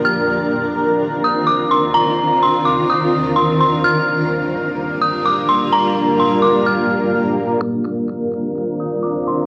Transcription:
X:1
M:4/4
L:1/8
Q:1/4=127
K:Cm
V:1 name="Synth bell"
f'4- f' e' d' c' | b2 c' d' e'2 c' c' | f'4- f' e' d' c' | b2 c' d' f'2 z2 |
f'4- f' e' d' c' |]
V:2 name="Ambient pad"
[E,CDFB]8- | [E,CDFB]8 | [G,B,DFB]8- | [G,B,DFB]8 |
[E,CDFB]8 |]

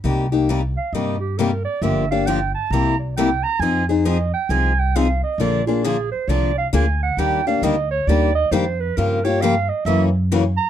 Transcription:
X:1
M:4/4
L:1/8
Q:"Swing" 1/4=134
K:Cm
V:1 name="Clarinet"
z3 f e G B d | =e f g =a b d g b | a c e g a g f e | d F A c d f a ^f |
g f e _d =d e c =B | B _d f e =e z2 ^a |]
V:2 name="Steel-string acoustic guitar"
[C,G,B,EG] [B,EG] [C,G,B,EG] z [C,G,B,EG] z [C,G,B,EG] z | [D,F,B,DG] [B,DG] [D,F,B,DG] z [C,G,B,=EG] z [C,G,B,EG] z | [F,CEA] [CEA] [F,CEA] z [F,CEA] z [F,CEA] z | [D,F,B,DA] [B,DA] [D,F,B,DA] z [D,F,B,DA] z [D,F,B,DA] z |
[E,G,B,DG] [B,DG] [E,G,B,DG] z [E,G,B,DG] z [E,G,B,DG] z | [_D,F,B,FG] [B,FG] [D,F,B,FG] z [^C,=E,^A,^C^F] z [C,E,A,CF] z |]
V:3 name="Upright bass" clef=bass
C,,4 G,,4 | G,,,4 C,,4 | F,,4 C,,4 | B,,,4 C,,2 D,,2 |
E,,2 D,,2 E,,2 F,,2 | G,,4 ^F,,4 |]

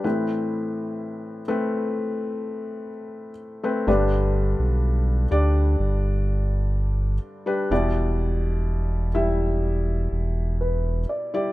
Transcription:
X:1
M:4/4
L:1/16
Q:1/4=62
K:G
V:1 name="Grand piano"
B12 z4 | z16 | z12 B2 d2 |]
V:2 name="Felt piano"
[A,,E,A,CB]6 [A,CB]8 z [A,CB] | [G,,D,G,DB]6 [G,Dd]8 z [G,DB] | [B,,G,Ed]6 [G,Ee]8 z [G,Ed] |]
V:3 name="Sub bass" clef=bass
z16 | G,,,3 B,,,3 D,,2 G,,,6 z2 | E,,,8- E,,,2 E,,,4 z2 |]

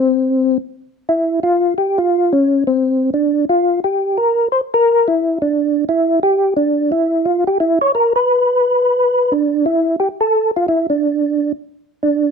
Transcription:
X:1
M:4/4
L:1/8
Q:"Swing" 1/4=175
K:Ddor
V:1 name="Tonewheel organ"
C3 z3 E2 | F2 G F2 ^C2 =C- | C2 D2 F2 G2 | _B2 c B2 E2 D- |
D2 E2 G2 D2 | E2 F G E ^c _B =B- | B6 D2 | E2 G A2 F E D- |
D3 z3 D2 |]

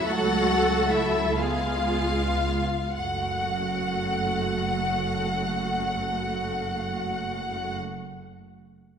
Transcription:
X:1
M:6/8
L:1/16
Q:3/8=40
K:F#m
V:1 name="Violin section"
f4 e2 ^e6 | f12- | f12 |]
V:2 name="Cello section"
A6 G3 z3 | F,,12- | F,,12 |]
V:3 name="Violin section"
F4 E2 ^E6 | f12- | f12 |]
V:4 name="Viola section"
[F,A,]6 [G,B,]4 z2 | [A,F]12- | [A,F]12 |]
V:5 name="Double bass section" clef=bass
C,,8- C,,2 z2 | F,,,12- | F,,,12 |]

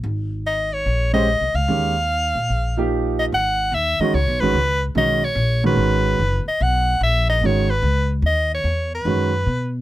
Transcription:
X:1
M:4/4
L:1/8
Q:"Swing" 1/4=146
K:Ebmix
V:1 name="Soprano saxophone"
z2 e d2 e2 f- | f6 z e | [K:G#m] f2 e d c B2 z | d c2 B4 d |
f2 e d c B2 z | d c2 B4 z |]
V:2 name="Grand piano"
z4 z [A,DGc] z2 | [E,A,DG] z4 [F,B,EG]3 | [K:G#m] z3 [D,G,CF] z [D,G,CF] z2 | [D,G,CF] z2 [D,G,CF]3 z2 |
z4 [D,G,CF] z3 | z4 [D,G,CF] z3 |]
V:3 name="Upright bass" clef=bass
A,,,4 B,,,2- (3B,,, C,, D,, | E,,3 B,, B,,,4 | [K:G#m] G,,,2 D,, z (3C,, B,,, G,,, C,,2 | B,,,2 A,,,2 G,,,2 F,,, z |
B,,,2 A,,,2 G,,,2 C,,2 | D,,2 E,,2 F,,2 B,,2 |]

